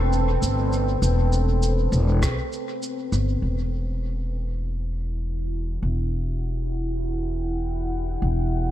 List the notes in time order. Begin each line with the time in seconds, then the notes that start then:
Already playing: E1 C4 A4 B4
0.13 cabasa
0.42 G1, cabasa
0.73 cabasa
1.02 E1, cabasa
1.33 cabasa
1.63 cabasa
1.92 E1, cabasa
2.22 B1, kick, cross-stick, cabasa
2.53 cabasa
2.83 cabasa
3.12 G1, cabasa
3.42 E1 E4
3.65 F#5
4.08 B4
4.47 D5
4.69 G5
5.82 E1
8.22 E1